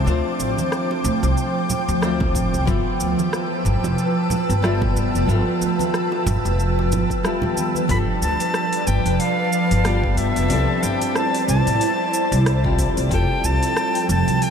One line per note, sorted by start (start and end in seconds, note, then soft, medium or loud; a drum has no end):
0.00 7.86 F3 medium
0.00 2.64 C5 medium
0.00 7.91 G5 medium
0.00 2.64 D6 medium
0.04 0.20 D2 medium
0.04 1.98 A3 medium
0.04 1.99 C4 medium
0.04 1.99 D4 medium
0.04 2.00 F4 medium
0.04 2.65 G5 medium
0.04 cabasa soft
0.09 2.00 C5 loud
0.39 0.53 A1 medium
0.39 cabasa medium
0.57 high bongo soft
0.57 high conga medium
0.57 cabasa soft
0.72 cross-stick medium
0.72 cabasa soft
0.91 high bongo medium
1.04 1.18 D2 medium
1.04 low conga medium
1.04 cabasa medium
1.23 1.33 C2 medium
1.23 high bongo medium
1.23 cabasa soft
1.37 cabasa soft
1.70 low conga medium
1.70 cabasa medium
1.89 2.35 D2 medium
1.89 cabasa soft
2.01 2.64 A3 medium
2.01 2.64 C4 medium
2.01 2.65 D4 medium
2.01 2.65 F4 medium
2.01 2.65 C5 medium
2.01 cross-stick medium
2.01 cabasa soft
2.20 kick medium
2.20 high conga medium
2.20 low conga medium
2.35 2.48 A1 medium
2.35 kick medium
2.35 high conga medium
2.35 cabasa medium
2.54 2.64 C2 medium
2.54 high conga medium
2.54 cabasa soft
2.65 2.81 G1 medium
2.65 2.69 G3 medium
2.65 4.59 B3 medium
2.65 4.60 E4 medium
2.65 4.61 F4 medium
2.65 7.86 B4 medium
2.65 7.86 A5 medium
2.65 7.86 E6 medium
2.65 kick loud
2.65 cabasa soft
2.70 4.61 A4 medium
3.00 3.14 D2 medium
3.00 cabasa medium
3.19 high conga medium
3.19 cabasa soft
3.33 cross-stick medium
3.33 cabasa soft
3.65 3.79 G1 medium
3.65 low conga medium
3.65 cabasa medium
3.84 3.94 F1 medium
3.84 high bongo medium
3.84 cabasa soft
3.98 cabasa soft
4.30 low conga medium
4.30 cabasa medium
4.49 4.98 G1 medium
4.49 high conga medium
4.49 cabasa soft
4.62 5.25 G3 medium
4.62 5.25 B3 medium
4.62 5.25 E4 medium
4.62 5.26 F4 medium
4.62 5.26 D5 loud
4.62 cross-stick loud
4.62 cabasa soft
4.82 kick loud
4.82 low conga medium
4.96 5.09 G2 medium
4.96 cabasa medium
5.15 5.25 F1 medium
5.15 cabasa soft
5.26 5.42 G1 medium
5.26 5.31 G3 medium
5.26 7.21 B3 medium
5.26 7.21 E4 medium
5.26 7.22 F4 medium
5.26 cabasa soft
5.31 7.22 A4 medium
5.61 5.74 D2 medium
5.61 cabasa medium
5.79 high bongo soft
5.79 high conga medium
5.79 cabasa soft
5.94 cross-stick medium
5.94 cabasa soft
6.12 high bongo medium
6.26 6.40 G1 medium
6.26 low conga medium
6.26 cabasa medium
6.45 6.92 F1 medium
6.45 high bongo medium
6.45 cabasa soft
6.60 cabasa soft
6.79 high bongo medium
6.92 7.05 G1 medium
6.92 low conga medium
6.92 cabasa medium
7.10 kick medium
7.10 cabasa soft
7.23 7.86 G3 medium
7.23 7.86 B3 medium
7.23 7.86 E4 medium
7.23 7.87 F4 medium
7.23 7.87 A4 medium
7.23 cross-stick loud
7.23 cabasa soft
7.42 high conga medium
7.42 low conga medium
7.57 high conga medium
7.57 cabasa medium
7.75 high conga medium
7.75 cabasa soft
7.88 8.02 G1 loud
7.88 10.48 F3 medium
7.88 9.81 G3 medium
7.88 7.91 B3 medium
7.88 9.82 D4 medium
7.88 9.83 F4 medium
7.88 10.48 B4 medium
7.88 10.48 D5 medium
7.88 12.75 A5 loud
7.88 14.50 A5 medium
7.88 7.98 B5 loud
7.88 kick loud
7.88 open hi-hat medium
7.88 cabasa soft
7.92 9.83 A4 medium
8.22 8.35 D2 medium
8.22 8.89 A5 loud
8.22 cabasa medium
8.40 open hi-hat soft
8.40 cabasa soft
8.54 cross-stick medium
8.54 cabasa soft
8.73 open hi-hat medium
8.87 9.00 G1 medium
8.87 9.21 G5 medium
8.87 cabasa medium
9.06 9.16 F1 medium
9.06 open hi-hat soft
9.06 cabasa soft
9.20 10.19 F5 loud
9.20 open hi-hat medium
9.20 cabasa soft
9.53 cabasa medium
9.71 10.19 G1 medium
9.71 open hi-hat soft
9.71 cabasa soft
9.84 10.47 G3 medium
9.84 10.47 B3 medium
9.84 10.47 D4 medium
9.84 10.48 F4 medium
9.84 10.48 D5 loud
9.84 cross-stick loud
9.84 open hi-hat medium
9.84 cabasa soft
10.04 kick loud
10.17 10.31 G2 medium
10.17 10.84 E5 loud
10.17 open hi-hat medium
10.17 cabasa medium
10.36 10.46 F1 medium
10.36 open hi-hat soft
10.36 cabasa soft
10.48 10.63 C2 loud
10.48 12.42 G3 medium
10.48 12.42 C4 medium
10.48 12.43 D4 medium
10.48 12.77 E4 medium
10.48 12.44 E4 medium
10.48 12.77 C5 medium
10.48 12.77 D5 medium
10.48 open hi-hat medium
10.48 cabasa soft
10.53 12.44 A4 medium
10.83 10.96 G1 medium
10.83 11.17 G5 medium
10.83 cabasa medium
11.01 open hi-hat soft
11.01 cabasa soft
11.15 11.48 A5 loud
11.15 cross-stick loud
11.15 cabasa soft
11.35 open hi-hat medium
11.48 11.61 C2 medium
11.48 12.75 A5 loud
11.48 cabasa medium
11.67 11.77 A1 medium
11.67 open hi-hat soft
11.67 cabasa soft
11.81 open hi-hat medium
11.81 cabasa soft
12.14 cabasa medium
12.32 12.80 C2 medium
12.32 open hi-hat soft
12.32 cabasa soft
12.46 cross-stick loud
12.46 open hi-hat medium
12.46 cabasa soft
12.63 13.07 G3 medium
12.63 13.08 C4 medium
12.63 13.08 E4 medium
12.63 13.08 F4 medium
12.63 13.09 G4 medium
12.63 kick loud
12.78 12.92 F2 medium
12.78 14.50 F3 medium
12.78 14.50 A4 medium
12.78 14.50 G5 medium
12.78 kick medium
12.78 open hi-hat medium
12.78 cabasa medium
12.97 13.07 C2 medium
12.97 open hi-hat soft
12.97 cabasa soft
13.09 13.24 F1 loud
13.09 14.50 G3 medium
13.09 14.50 C4 medium
13.09 14.50 E4 medium
13.09 14.50 F4 medium
13.09 kick loud
13.09 open hi-hat medium
13.09 cabasa soft
13.13 14.50 A4 medium
13.13 13.47 G5 loud
13.44 13.57 C2 medium
13.44 14.10 A5 loud
13.44 cabasa medium
13.63 open hi-hat soft
13.63 cabasa soft
13.77 cross-stick loud
13.77 cabasa soft
13.95 open hi-hat medium
14.09 14.22 F1 medium
14.09 14.44 A5 loud
14.09 cabasa medium
14.28 14.37 C2 medium
14.28 open hi-hat soft
14.28 cabasa soft
14.42 14.50 G5 loud
14.42 open hi-hat medium
14.42 cabasa soft